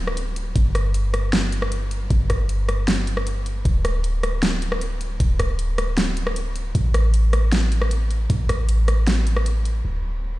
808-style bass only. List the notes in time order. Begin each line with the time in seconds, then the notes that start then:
Already playing: D1
0.56 G1
2.10 G1
3.65 D1
5.20 D1
6.75 A1
8.30 A1
9.85 D1